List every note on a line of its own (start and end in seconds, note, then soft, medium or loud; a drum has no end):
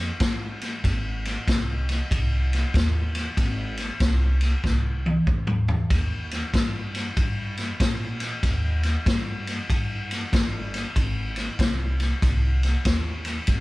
0.20 0.85 G#2 medium
0.20 kick medium
0.20 snare loud
0.20 ride medium
0.61 snare soft
0.61 ride medium
0.84 1.36 G#1 loud
0.84 kick medium
0.84 snare soft
0.84 ride medium
1.25 snare soft
1.25 ride medium
1.47 1.99 C2 medium
1.47 kick medium
1.47 snare loud
1.47 ride medium
1.89 snare soft
1.89 ride medium
2.11 2.62 C2 medium
2.11 kick medium
2.11 ride medium
2.53 snare soft
2.53 ride medium
2.74 3.25 D#2 medium
2.74 kick medium
2.74 snare loud
2.74 ride medium
3.15 snare soft
3.15 ride medium
3.37 3.89 G#1 medium
3.37 kick medium
3.37 snare soft
3.37 ride medium
3.77 snare soft
3.77 ride medium
4.00 4.52 C2 medium
4.00 kick medium
4.00 snare loud
4.00 ride medium
4.41 snare soft
4.41 ride medium
4.64 5.15 C2 medium
4.64 kick medium
4.64 snare medium
5.06 high tom medium
5.27 5.78 D#2 medium
5.27 kick medium
5.27 mid tom medium
5.47 mid tom medium
5.68 floor tom medium
5.90 6.42 D#2 medium
5.90 kick medium
5.90 snare soft
5.90 ride medium
6.31 snare soft
6.31 ride medium
6.54 7.05 G2 medium
6.54 kick medium
6.54 snare loud
6.54 ride medium
6.95 snare soft
6.95 ride medium
7.17 7.68 G2 medium
7.17 kick medium
7.17 ride medium
7.57 snare soft
7.57 ride medium
7.80 8.32 A#2 medium
7.80 kick medium
7.80 snare loud
7.80 ride medium
8.20 snare soft
8.20 ride medium
8.43 8.95 D#2 medium
8.43 kick medium
8.43 snare soft
8.43 ride medium
8.83 snare soft
8.83 ride medium
9.06 9.58 G2 medium
9.06 kick medium
9.06 snare loud
9.06 ride medium
9.47 snare soft
9.47 ride medium
9.70 10.21 G2 medium
9.70 kick medium
9.70 ride medium
10.11 snare soft
10.11 ride medium
10.32 10.84 G1 medium
10.32 kick medium
10.32 snare loud
10.32 ride medium
10.74 snare soft
10.74 ride medium
10.96 11.47 G#1 medium
10.96 kick medium
10.96 ride medium
11.36 snare soft
11.36 ride medium
11.59 12.10 C2 medium
11.59 kick medium
11.59 snare loud
11.59 ride medium
12.00 snare soft
12.00 ride medium
12.22 12.74 C2 medium
12.22 kick medium
12.22 snare soft
12.22 ride medium
12.63 snare soft
12.63 ride medium
12.85 13.37 D#2 medium
12.85 kick medium
12.85 snare loud
12.85 ride medium
13.25 snare soft
13.25 ride medium
13.47 13.60 G#1 loud
13.47 kick medium
13.47 snare soft
13.47 ride medium